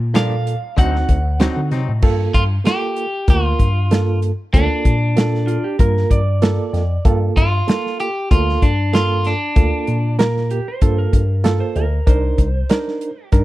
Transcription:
Already playing: A#2
0.14 G2 F3 A#3 D4 F4 A4 F5, snare, closed hi-hat
0.47 closed hi-hat
0.77 D2 D3 F#3 C4 D#4 F#4 F#5, kick, closed hi-hat
0.96 snare
1.09 D2, kick, closed hi-hat
1.40 D3 F#3 C4 D#4 F#4, snare, closed hi-hat
1.56 D3
1.71 C3 F#3 C4 D#4, snare, closed hi-hat
1.88 A2
2.02 G2 A#3 F4 A4, kick, crash
2.34 G2 F4, kick, closed hi-hat
2.64 A#3 F4 G4 A4, snare, closed hi-hat
2.96 closed hi-hat
3.28 D2 A#3 F4 A#4, kick, closed hi-hat
3.59 G2, kick, closed hi-hat
3.91 A#3 F4 A4, snare, closed hi-hat
4.22 closed hi-hat
4.54 D2 A#3 D4 F4 A4, kick, closed hi-hat
4.85 A#2, kick, closed hi-hat
5.16 A#3 F4 A4, snare, closed hi-hat
5.35 snare
5.47 F4, closed hi-hat
5.64 G4
5.79 G2 A#3 F4 A#4, kick, closed hi-hat
5.97 snare
6.10 G2 D5, kick, closed hi-hat
6.42 A#3 F4 A4, snare, closed hi-hat
6.73 F2, snare, closed hi-hat
7.05 G2 A#3 F4 A4, kick, closed hi-hat
7.37 G2 F4, kick, closed hi-hat
7.67 A#3 F4 A4, snare, closed hi-hat
7.86 snare
8.00 G4, closed hi-hat
8.31 D2 A#3 F4 A4, kick, closed hi-hat
8.49 snare
8.62 G2 D4, kick, closed hi-hat
8.93 A#3 F4 A4, snare, closed hi-hat
9.24 D4, snare, closed hi-hat
9.56 D2 A#3 F4 A4, kick, closed hi-hat
9.87 A#2, closed hi-hat
10.19 A#3 F4 A#4, snare, closed hi-hat
10.37 snare
10.50 G4, closed hi-hat
10.68 C5
10.81 G2 A#3 F4 A4, kick, closed hi-hat
10.98 A#4
11.13 G2, kick, closed hi-hat
11.44 A#3 F4 A4, snare, closed hi-hat
11.60 C5
11.75 D2 A#4, closed hi-hat
12.07 C2 D4 D#4 A#4 C5, kick, closed hi-hat
12.38 C2, kick, closed hi-hat
12.69 D4 D#4 A#4, snare, closed hi-hat
12.88 snare
13.01 closed hi-hat
13.32 G2 D4 D#4 A#4, kick, closed hi-hat

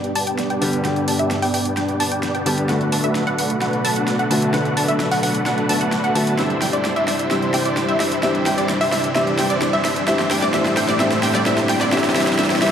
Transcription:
Already playing: G2 D3 G3 B3 D4 G4 D5 G5, riser
0.04 closed hi-hat
0.15 B3 D4 G4 D5 A5, open hi-hat
0.27 B3 D4 G4 D5 G5, closed hi-hat
0.39 snare, closed hi-hat
0.50 B3 D4 G4 D5 G5, closed hi-hat
0.61 D3 G3 B3 D4 G4 D5 A5, open hi-hat
0.73 closed hi-hat
0.84 D3 G3 B3 D4 G4 D5 G5, snare, closed hi-hat
0.96 closed hi-hat
1.08 B3 D4 G4 D5 A5, open hi-hat
1.19 B3 D4 G4 D5 E5, closed hi-hat
1.31 snare, closed hi-hat
1.42 B3 D4 G4 D5 G5, open hi-hat
1.54 B3 D4 G4 D5 G5, open hi-hat
1.65 closed hi-hat
1.77 B3 D4 G4 D5 G5, snare, closed hi-hat
1.88 closed hi-hat
2.00 B3 D4 G4 D5 A5, open hi-hat
2.12 B3 D4 G4 D5 G5, closed hi-hat
2.23 snare, closed hi-hat
2.35 B3 D4 G4 D5 G5, closed hi-hat
2.46 D3 G3 B3 D4 G4 D5 A5, open hi-hat
2.58 closed hi-hat
2.68 B2 D3 F#3 A3 B3 D4 F#4 B4 F#5, snare, closed hi-hat
2.81 closed hi-hat
2.92 A3 D4 F#4 B4 A5, open hi-hat
3.04 A3 D4 F#4 B4 E5, closed hi-hat
3.15 snare, closed hi-hat
3.27 A3 D4 F#4 B4 F#5, closed hi-hat
3.38 A3 D4 F#4 B4 F#5, open hi-hat
3.50 closed hi-hat
3.61 A3 D4 F#4 B4 F#5, snare, closed hi-hat
3.73 closed hi-hat
3.85 A3 D4 F#4 B4 A5, open hi-hat
3.96 A3 D4 F#4 B4 F#5, closed hi-hat
4.08 snare, closed hi-hat
4.19 A3 D4 F#4 B4 F#5, closed hi-hat
4.30 D3 A3 B3 D4 F#4 B4 A5, open hi-hat
4.42 closed hi-hat
4.53 D3 A3 B3 D4 F#4 A4 B4 F#5, snare, closed hi-hat
4.65 closed hi-hat
4.77 A3 D4 F#4 B4 A5, open hi-hat
4.88 A3 D4 F#4 B4 E5, closed hi-hat
5.00 snare, closed hi-hat
5.11 A3 D4 F#4 B4 F#5, open hi-hat
5.23 A3 D4 F#4 B4 F#5, open hi-hat
5.35 closed hi-hat
5.46 A3 D4 F#4 B4 F#5, snare, closed hi-hat
5.58 closed hi-hat
5.69 D3 A3 B3 D4 F#4 B4 A5, open hi-hat
5.81 A3 D4 F#4 B4 F#5, closed hi-hat
5.92 snare, closed hi-hat
6.04 A3 D4 F#4 B4 F#5, closed hi-hat
6.15 D3 A3 B3 D4 F#4 B4 A5, open hi-hat
6.27 closed hi-hat
6.37 C3 E3 G3 C4 D4 E4 G4 C5 E5, snare, closed hi-hat
6.50 closed hi-hat
6.62 G3 D4 E4 C5 G5, snare, open hi-hat
6.73 G3 D4 E4 C5 D5, closed hi-hat
6.85 snare, closed hi-hat
6.96 G3 D4 E4 C5 E5, closed hi-hat
7.08 G3 D4 E4 C5 E5, snare, open hi-hat
7.19 closed hi-hat
7.30 E3 G3 C4 D4 E4 G4 C5 E5, snare, closed hi-hat
7.42 closed hi-hat
7.54 G3 D4 E4 C5 G5, snare, open hi-hat
7.65 G3 D4 E4 C5 D5, closed hi-hat
7.77 snare, closed hi-hat
7.88 G3 D4 E4 C5 E5, closed hi-hat
8.00 G3 D4 E4 C5 E5, snare, open hi-hat
8.12 closed hi-hat
8.22 E3 G3 C4 D4 E4 G4 C5 D5 E5, snare, closed hi-hat
8.35 closed hi-hat
8.46 G3 D4 E4 C5 G5, snare, open hi-hat
8.58 G3 D4 E4 C5 D5, closed hi-hat
8.69 snare, closed hi-hat
8.81 G3 D4 E4 C5 E5, open hi-hat
8.92 G3 D4 E4 C5 E5, snare, open hi-hat
9.04 closed hi-hat
9.14 E3 G3 C4 D4 E4 G4 C5 E5, snare, closed hi-hat
9.27 closed hi-hat
9.38 G3 D4 E4 C5 G5, snare, open hi-hat
9.50 G3 D4 E4 C5 D5, closed hi-hat
9.62 snare, closed hi-hat
9.73 G3 D4 E4 C5 E5, closed hi-hat
9.85 G3 D4 E4 C5 E5, snare, open hi-hat
9.96 closed hi-hat
10.07 A2 E3 G3 A3 C4 D4 E4 G4 C5 E5, snare, closed hi-hat
10.19 snare, closed hi-hat
10.31 G3 D4 E4 C5 G5, snare, open hi-hat
10.42 G3 D4 E4 C5 D5, snare, closed hi-hat
10.53 E3 G3 C4 D4 E4 G4 C5 E5, snare, closed hi-hat
10.65 snare, closed hi-hat
10.77 G3 D4 E4 C5 G5, snare, open hi-hat
10.89 G3 D4 E4 C5 D5, snare, closed hi-hat
10.99 E3 G3 C4 D4 E4 G4 C5 E5, snare, closed hi-hat
11.12 snare, closed hi-hat
11.23 G3 D4 E4 C5 G5, snare, open hi-hat
11.35 G3 D4 E4 C5 D5, snare, closed hi-hat
11.45 E3 G3 C4 D4 E4 G4 C5 E5, snare, closed hi-hat
11.58 snare, closed hi-hat
11.69 G3 D4 E4 C5 G5, snare, open hi-hat
11.81 G3 D4 E4 C5 D5, snare, closed hi-hat
11.91 E3 G3 C4 D4 E4 G4 C5 D5 E5, snare, closed hi-hat
11.98 snare
12.04 snare, closed hi-hat
12.10 snare
12.14 E3 G3 C4 D4 E4 G4 C5 E5, snare, open hi-hat
12.21 snare
12.27 snare, closed hi-hat
12.33 snare
12.37 E3 G3 C4 D4 E4 G4 C5 E5, snare, closed hi-hat
12.44 snare
12.50 snare, open hi-hat
12.56 snare
12.61 E3 G3 C4 D4 E4 G4 C5 E5, snare, open hi-hat
12.67 snare

